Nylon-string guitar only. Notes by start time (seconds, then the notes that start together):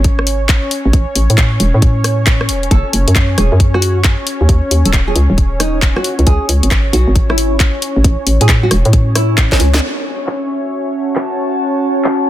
2.71 A4
3.38 G#4
3.74 F#4
4.85 A4
5.08 G#4
5.60 D#4
5.96 F#4
6.26 G#4
6.93 F#4
7.29 E4
8.41 G#4
8.63 F#4
9.15 E4
9.52 C#4